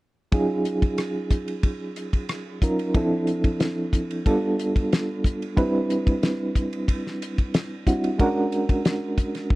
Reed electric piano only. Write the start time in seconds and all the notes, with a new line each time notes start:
0.32 F#3 C#4 D#4 F4 G#4
2.63 F#3 C#4 D#4 F4 A#4
2.94 F3 C4 D4 E4 A4
4.26 G3 B3 D4 F4 A4
5.56 G3 C4 D4 E4 B4
7.86 G3 C4 D4 E4 F#4
8.18 G#3 C#4 D4 F#4 A#4